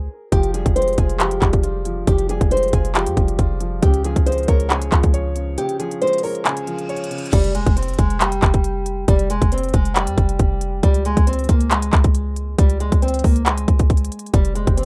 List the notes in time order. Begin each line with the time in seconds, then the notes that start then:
Already playing: G#4
0.32 F1 F3 G4, kick, closed hi-hat
0.43 closed hi-hat
0.54 G3 G#4, closed hi-hat
0.66 F1, kick, closed hi-hat
0.76 G#3 C5, closed hi-hat
0.82 closed hi-hat
0.88 closed hi-hat
0.93 closed hi-hat
0.98 F1 F4 G#4, kick, closed hi-hat
1.09 closed hi-hat
1.19 F3 G4, clap, closed hi-hat
1.31 closed hi-hat
1.42 F1 G3, kick, clap, closed hi-hat
1.53 kick, closed hi-hat
1.63 F4, closed hi-hat
1.85 F3, closed hi-hat
2.07 F1 F3 G4, kick, closed hi-hat
2.18 closed hi-hat
2.29 G3 G#4, closed hi-hat
2.41 F1, kick, closed hi-hat
2.51 G#3 C5, closed hi-hat
2.57 closed hi-hat
2.63 closed hi-hat
2.68 closed hi-hat
2.73 F1 F4 G#4, kick, closed hi-hat
2.85 closed hi-hat
2.95 F3 G4, clap, closed hi-hat
3.06 F2, closed hi-hat
3.17 F1 G3, kick, closed hi-hat
3.28 closed hi-hat
3.39 F1 F4, kick, closed hi-hat
3.60 F3, closed hi-hat
3.82 C#2 C#3 G4, kick, closed hi-hat
3.94 closed hi-hat
4.04 F3 G#4, closed hi-hat
4.16 C#2, kick, closed hi-hat
4.26 G#3 C5, closed hi-hat
4.32 closed hi-hat
4.38 closed hi-hat
4.43 closed hi-hat
4.48 C#2 A#4 C#5, kick, closed hi-hat
4.60 closed hi-hat
4.70 C#3 G#4, clap, closed hi-hat
4.82 closed hi-hat
4.92 C#2 F3, kick, clap, closed hi-hat
5.03 C#2, kick, closed hi-hat
5.14 C#5, closed hi-hat
5.36 C#3, closed hi-hat
5.58 C#3 G4, closed hi-hat
5.69 closed hi-hat
5.80 F3 G#4, closed hi-hat
5.91 closed hi-hat
6.01 G#3 C5, closed hi-hat
6.07 closed hi-hat
6.13 closed hi-hat
6.18 closed hi-hat
6.23 A#4 C#5, open hi-hat
6.35 closed hi-hat
6.45 C#3 G#4, clap, closed hi-hat, reverse cymbal
6.57 closed hi-hat
6.67 F3, closed hi-hat
6.79 closed hi-hat
6.89 C#5, closed hi-hat
6.96 closed hi-hat
7.04 closed hi-hat
7.11 C#3, closed hi-hat
7.18 closed hi-hat
7.26 closed hi-hat
7.33 F1 G3, kick, closed hi-hat, crash, impact
7.44 closed hi-hat
7.55 G#3, closed hi-hat
7.66 F1, kick, closed hi-hat
7.76 C4, closed hi-hat
7.83 closed hi-hat
7.88 closed hi-hat
7.94 closed hi-hat
7.99 F1 G#3, kick, closed hi-hat
8.10 closed hi-hat
8.20 G3, clap, closed hi-hat
8.32 closed hi-hat
8.42 F1, kick, clap, closed hi-hat
8.54 kick, closed hi-hat
8.64 closed hi-hat
8.86 closed hi-hat
9.08 F1 G3, kick, closed hi-hat
9.19 closed hi-hat
9.30 G#3, closed hi-hat
9.42 F1, kick, closed hi-hat
9.52 C4, closed hi-hat
9.58 closed hi-hat
9.63 closed hi-hat
9.69 closed hi-hat
9.74 F1 G#3, kick, closed hi-hat
9.85 closed hi-hat
9.96 G3, clap, closed hi-hat
10.07 F2, closed hi-hat
10.18 F1, kick, closed hi-hat
10.29 closed hi-hat
10.39 F1, kick, closed hi-hat
10.61 closed hi-hat
10.83 C#2 G3, kick, closed hi-hat
10.94 closed hi-hat
11.05 G#3, closed hi-hat
11.17 C#2, kick, closed hi-hat
11.27 C4, closed hi-hat
11.33 closed hi-hat
11.39 closed hi-hat
11.44 closed hi-hat
11.49 C#2 A#3, kick, closed hi-hat
11.61 closed hi-hat
11.71 G#3, clap, closed hi-hat
11.82 closed hi-hat
11.93 C#2, kick, clap, closed hi-hat
12.04 kick, closed hi-hat
12.15 closed hi-hat
12.36 closed hi-hat
12.58 C#2 G3, kick, closed hi-hat
12.70 closed hi-hat
12.80 G#3, closed hi-hat
12.92 C#2, kick, closed hi-hat
13.02 C4, closed hi-hat
13.08 closed hi-hat
13.14 closed hi-hat
13.19 closed hi-hat
13.24 C#2 A#3, kick, open hi-hat
13.36 closed hi-hat
13.46 G#3, clap, closed hi-hat
13.58 closed hi-hat
13.68 C#2, kick, closed hi-hat
13.79 kick, closed hi-hat
13.90 kick, closed hi-hat
13.97 closed hi-hat
14.05 closed hi-hat
14.12 closed hi-hat
14.19 closed hi-hat
14.26 closed hi-hat
14.33 F1 F3 G3 C4 G4 C5, kick, closed hi-hat
14.45 closed hi-hat
14.55 G#3, closed hi-hat
14.67 F1, kick, closed hi-hat
14.77 C4, closed hi-hat